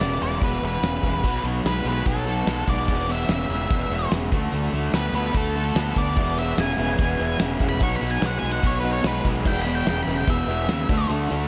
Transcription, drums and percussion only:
0.01 snare loud
0.01 closed hi-hat medium
0.22 closed hi-hat medium
0.41 kick loud
0.41 closed hi-hat medium
0.53 snare soft
0.63 closed hi-hat medium
0.83 snare loud
0.83 closed hi-hat loud
1.03 kick medium
1.03 closed hi-hat medium
1.24 kick loud
1.24 closed hi-hat medium
1.45 closed hi-hat medium
1.66 snare loud
1.66 closed hi-hat medium
1.86 closed hi-hat medium
2.06 kick loud
2.06 closed hi-hat loud
2.17 snare soft
2.27 closed hi-hat medium
2.47 snare loud
2.47 closed hi-hat loud
2.68 kick medium
2.68 closed hi-hat medium
2.88 kick loud
2.88 crash medium
3.09 closed hi-hat medium
3.29 snare loud
3.29 closed hi-hat medium
3.50 closed hi-hat medium
3.70 kick loud
3.70 closed hi-hat medium
3.92 closed hi-hat medium
4.11 snare loud
4.11 closed hi-hat loud
4.32 kick loud
4.32 closed hi-hat medium
4.52 closed hi-hat medium
4.72 closed hi-hat medium
4.93 snare loud
4.93 closed hi-hat medium
5.14 closed hi-hat medium
5.34 kick loud
5.34 closed hi-hat medium
5.55 closed hi-hat medium
5.76 snare loud
5.76 closed hi-hat loud
5.96 kick medium
5.96 closed hi-hat medium
6.17 kick loud
6.17 crash medium
6.37 closed hi-hat medium
6.58 snare loud
6.58 closed hi-hat medium
6.69 snare soft
6.78 closed hi-hat medium
6.99 kick loud
6.99 closed hi-hat loud
7.19 closed hi-hat medium
7.39 snare loud
7.39 closed hi-hat loud
7.59 kick medium
7.59 closed hi-hat medium
7.80 kick loud
7.80 closed hi-hat loud
8.01 closed hi-hat medium
8.22 snare loud
8.22 closed hi-hat medium
8.43 closed hi-hat medium
8.63 kick loud
8.63 closed hi-hat loud
8.83 closed hi-hat medium
9.04 snare loud
9.04 closed hi-hat loud
9.25 kick medium
9.25 closed hi-hat medium
9.45 kick loud
9.45 crash loud
9.66 snare soft
9.66 closed hi-hat medium
9.87 snare loud
9.87 closed hi-hat medium
10.07 closed hi-hat medium
10.28 kick loud
10.28 closed hi-hat loud
10.49 closed hi-hat medium
10.69 snare loud
10.69 closed hi-hat loud
10.89 kick loud
10.89 closed hi-hat medium
11.10 closed hi-hat medium
11.30 closed hi-hat medium

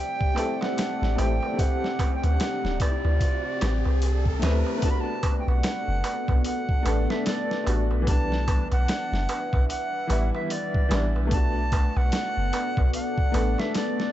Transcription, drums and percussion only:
0.21 kick medium
0.36 open hi-hat medium
0.36 darbuka tek medium
0.61 snare medium
0.61 darbuka tek soft
0.78 snare loud
0.78 open hi-hat medium
0.78 darbuka tek soft
1.03 snare soft
1.18 open hi-hat medium
1.18 darbuka tek medium
1.43 darbuka tek soft
1.59 kick loud
1.59 open hi-hat medium
1.59 darbuka tek soft
1.84 snare soft
1.99 kick medium
1.99 open hi-hat medium
1.99 darbuka tek medium
2.23 closed hi-hat soft
2.23 darbuka tek soft
2.40 snare loud
2.40 open hi-hat medium
2.40 darbuka tek soft
2.65 snare soft
2.80 kick medium
2.80 open hi-hat medium
2.80 darbuka tek medium
3.05 darbuka tek soft
3.21 kick medium
3.21 open hi-hat medium
3.21 darbuka tek soft
3.61 snare loud
3.61 open hi-hat medium
3.61 darbuka tek medium
3.85 darbuka tek soft
4.02 open hi-hat medium
4.02 darbuka tek soft
4.26 kick loud
4.42 snare loud
4.42 open hi-hat medium
4.42 darbuka tek medium
4.66 darbuka tek soft
4.82 kick loud
4.82 open hi-hat medium
4.82 darbuka tek soft
5.23 kick medium
5.23 open hi-hat medium
5.23 darbuka tek loud
5.48 darbuka tek soft
5.63 snare loud
5.63 open hi-hat medium
5.63 darbuka tek soft
6.04 open hi-hat medium
6.04 darbuka tek medium
6.28 kick medium
6.28 darbuka tek medium
6.45 open hi-hat medium
6.45 darbuka tek soft
6.69 kick medium
6.86 open hi-hat medium
6.86 darbuka tek medium
7.10 snare medium
7.10 darbuka tek medium
7.26 snare loud
7.26 open hi-hat medium
7.26 darbuka tek soft
7.51 snare soft
7.67 open hi-hat medium
7.67 darbuka tek medium
7.91 darbuka tek soft
8.07 kick loud
8.07 open hi-hat medium
8.07 darbuka tek soft
8.32 snare soft
8.48 kick medium
8.48 open hi-hat medium
8.48 darbuka tek medium
8.71 closed hi-hat soft
8.71 darbuka tek medium
8.88 snare loud
8.88 open hi-hat medium
8.88 darbuka tek soft
9.14 snare soft
9.29 open hi-hat medium
9.29 darbuka tek medium
9.53 kick medium
9.53 darbuka tek medium
9.69 open hi-hat medium
9.69 darbuka tek soft
10.10 open hi-hat medium
10.10 darbuka tek medium
10.35 darbuka tek soft
10.50 open hi-hat medium
10.50 darbuka tek soft
10.74 kick loud
10.91 snare loud
10.91 open hi-hat medium
10.91 darbuka tek loud
11.16 darbuka tek soft
11.31 kick loud
11.31 open hi-hat medium
11.31 darbuka tek soft
11.72 kick loud
11.72 open hi-hat medium
11.72 darbuka tek loud
11.97 darbuka tek soft
12.12 snare loud
12.12 open hi-hat medium
12.12 darbuka tek soft
12.53 open hi-hat medium
12.53 darbuka tek medium
12.77 kick medium
12.77 darbuka tek soft
12.93 open hi-hat medium
12.93 darbuka tek soft
13.18 kick loud
13.34 open hi-hat medium
13.34 darbuka tek medium
13.58 snare medium
13.58 darbuka tek soft
13.74 snare loud
13.74 open hi-hat medium
13.74 darbuka tek soft
14.00 snare soft

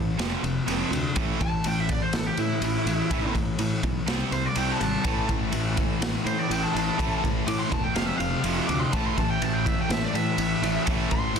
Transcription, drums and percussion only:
0.19 snare loud
0.19 ride medium
0.44 ride medium
0.68 snare soft
0.68 ride medium
0.93 ride medium
1.16 kick loud
1.16 ride loud
1.41 kick medium
1.41 ride medium
1.64 ride medium
1.89 kick medium
1.89 ride medium
2.13 snare loud
2.13 ride loud
2.37 ride medium
2.62 ride loud
2.87 ride medium
3.11 kick loud
3.11 ride loud
3.35 kick medium
3.35 ride medium
3.59 ride medium
3.83 kick medium
3.83 ride medium
4.08 snare loud
4.08 ride medium
4.32 ride medium
4.55 ride medium
4.81 ride medium
5.04 kick loud
5.04 ride medium
5.29 kick medium
5.29 ride medium
5.52 ride medium
5.77 kick medium
5.77 ride medium
6.02 snare loud
6.02 ride loud
6.27 ride medium
6.51 ride medium
6.76 ride medium
6.99 kick loud
6.99 ride loud
7.24 kick medium
7.24 ride medium
7.48 ride loud
7.72 kick medium
7.72 ride medium
7.96 snare loud
7.96 ride loud
8.20 ride medium
8.44 ride loud
8.69 ride medium
8.93 kick loud
8.93 ride loud
9.18 kick medium
9.18 ride medium
9.42 ride medium
9.66 kick medium
9.66 ride medium
9.90 snare loud
9.90 ride loud
10.15 ride medium
10.38 ride loud
10.63 ride medium
10.87 kick loud
10.87 ride loud
11.11 kick medium
11.11 ride medium
11.36 ride medium

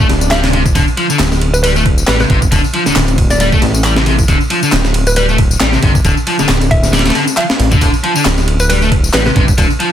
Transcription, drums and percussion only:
0.09 snare medium
0.09 ride medium
0.21 tambourine medium
0.31 snare loud
0.31 clap loud
0.31 ride medium
0.31 tambourine medium
0.44 snare loud
0.44 ride medium
0.44 tambourine soft
0.53 ride medium
0.66 kick medium
0.66 tambourine medium
0.75 kick loud
0.75 ride medium
0.75 tambourine medium
0.88 tambourine soft
0.97 ride medium
1.10 tambourine medium
1.19 snare loud
1.19 clap loud
1.19 ride medium
1.19 tambourine medium
1.32 snare medium
1.32 tambourine soft
1.41 ride medium
1.54 tambourine medium
1.64 ride medium
1.64 tambourine medium
1.76 tambourine soft
1.86 kick loud
1.86 ride medium
1.98 tambourine medium
2.08 snare loud
2.08 clap loud
2.08 ride medium
2.08 tambourine medium
2.20 snare medium
2.20 tambourine soft
2.30 kick loud
2.30 ride medium
2.42 kick medium
2.42 tambourine medium
2.52 kick loud
2.52 ride medium
2.52 tambourine medium
2.64 tambourine soft
2.74 ride medium
2.86 snare soft
2.86 tambourine medium
2.96 snare loud
2.96 clap loud
2.96 ride medium
2.96 tambourine medium
3.08 ride soft
3.08 tambourine soft
3.18 kick medium
3.18 ride medium
3.30 snare soft
3.30 tambourine medium
3.40 ride medium
3.40 tambourine medium
3.52 kick loud
3.52 tambourine soft
3.62 snare medium
3.62 ride medium
3.75 tambourine medium
3.84 clap loud
3.84 ride medium
3.84 tambourine medium
3.96 snare loud
3.96 tambourine soft
4.06 ride medium
4.19 kick loud
4.19 tambourine medium
4.28 kick loud
4.28 ride medium
4.28 tambourine medium
4.41 tambourine soft
4.50 ride medium
4.63 tambourine medium
4.72 snare loud
4.72 clap loud
4.72 ride medium
4.72 tambourine medium
4.85 snare medium
4.85 tambourine soft
4.94 ride medium
5.07 tambourine medium
5.16 ride medium
5.16 tambourine medium
5.29 tambourine soft
5.38 kick loud
5.38 ride medium
5.51 tambourine medium
5.60 snare loud
5.60 clap loud
5.60 ride medium
5.60 tambourine medium
5.73 snare medium
5.73 tambourine soft
5.83 kick medium
5.83 ride medium
5.95 kick loud
5.95 tambourine medium
6.05 kick loud
6.05 ride medium
6.05 tambourine medium
6.17 tambourine soft
6.27 ride medium
6.39 snare medium
6.39 tambourine medium
6.49 snare loud
6.49 clap loud
6.49 ride medium
6.49 tambourine medium
6.61 ride soft
6.61 tambourine soft
6.71 kick medium
6.71 ride medium
6.83 snare soft
6.83 tambourine medium
6.93 snare medium
6.93 ride medium
6.93 tambourine medium
6.99 snare medium
6.99 ride medium
7.06 snare medium
7.06 ride medium
7.06 tambourine soft
7.10 snare medium
7.10 ride medium
7.15 snare medium
7.15 ride medium
7.28 tambourine medium
7.37 clap loud
7.37 ride medium
7.37 tambourine medium
7.50 snare loud
7.50 tambourine soft
7.60 ride medium
7.72 kick loud
7.72 tambourine medium
7.81 kick loud
7.81 ride medium
7.81 tambourine medium
7.94 tambourine soft
8.04 ride medium
8.16 tambourine medium
8.25 snare loud
8.25 clap loud
8.25 ride medium
8.25 tambourine soft
8.38 snare medium
8.38 tambourine soft
8.48 ride medium
8.60 tambourine medium
8.69 ride medium
8.69 tambourine soft
8.82 tambourine soft
8.92 kick medium
8.92 ride medium
9.04 tambourine medium
9.14 snare loud
9.14 clap loud
9.14 ride medium
9.14 tambourine medium
9.26 snare medium
9.26 tambourine soft
9.36 kick loud
9.36 ride medium
9.48 kick loud
9.48 tambourine medium
9.58 kick loud
9.58 ride medium
9.58 tambourine medium
9.70 tambourine soft
9.80 ride medium

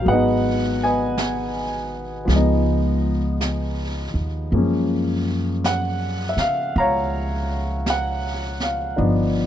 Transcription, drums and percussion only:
0.05 brush sweep soft
1.18 brush sweep soft
1.18 snare soft
1.18 hi-hat pedal soft
2.29 brush sweep soft
2.29 snare soft
3.41 brush sweep soft
3.41 snare soft
3.41 hi-hat pedal medium
4.52 brush sweep soft
5.64 brush sweep soft
5.64 snare soft
5.64 hi-hat pedal soft
6.37 snare soft
6.75 brush sweep soft
7.86 brush sweep soft
7.86 snare soft
7.86 hi-hat pedal soft
8.60 snare soft
8.96 brush sweep soft

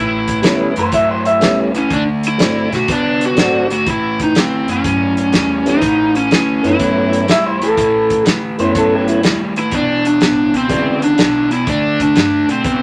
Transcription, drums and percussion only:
0.28 kick medium
0.28 closed hi-hat medium
0.43 snare loud
0.43 closed hi-hat medium
0.76 closed hi-hat medium
0.92 kick loud
0.92 closed hi-hat medium
1.25 closed hi-hat medium
1.41 snare loud
1.41 closed hi-hat medium
1.75 closed hi-hat medium
1.90 kick loud
1.90 closed hi-hat medium
2.23 closed hi-hat medium
2.39 snare loud
2.39 closed hi-hat medium
2.73 snare soft
2.73 closed hi-hat medium
2.88 kick loud
2.88 closed hi-hat medium
3.21 closed hi-hat medium
3.37 snare loud
3.37 closed hi-hat medium
3.70 closed hi-hat medium
3.86 kick loud
3.86 closed hi-hat medium
4.20 kick medium
4.20 closed hi-hat medium
4.35 snare loud
4.35 closed hi-hat medium
4.68 closed hi-hat medium
4.84 kick loud
4.84 closed hi-hat medium
5.17 closed hi-hat medium
5.33 snare loud
5.33 closed hi-hat medium
5.66 closed hi-hat medium
5.82 kick loud
5.82 closed hi-hat medium
6.15 closed hi-hat medium
6.31 snare loud
6.31 closed hi-hat medium
6.64 closed hi-hat medium
6.79 kick loud
6.79 closed hi-hat medium
7.13 closed hi-hat medium
7.28 snare loud
7.28 closed hi-hat medium
7.62 closed hi-hat medium
7.77 kick loud
7.77 closed hi-hat medium
8.10 kick medium
8.10 closed hi-hat medium
8.26 snare loud
8.26 closed hi-hat medium
8.59 closed hi-hat medium
8.75 kick loud
8.75 closed hi-hat medium
9.08 closed hi-hat medium
9.23 snare loud
9.23 closed hi-hat medium
9.56 closed hi-hat medium
9.71 kick loud
9.71 closed hi-hat medium
10.05 closed hi-hat medium
10.21 snare loud
10.21 closed hi-hat medium
10.54 closed hi-hat medium
10.69 kick loud
10.69 closed hi-hat medium
11.02 closed hi-hat medium
11.18 snare loud
11.18 closed hi-hat medium
11.51 closed hi-hat medium
11.67 kick loud
11.67 closed hi-hat medium
12.00 kick medium
12.00 closed hi-hat medium
12.16 snare loud
12.16 closed hi-hat medium
12.49 closed hi-hat medium
12.64 kick loud
12.64 closed hi-hat medium

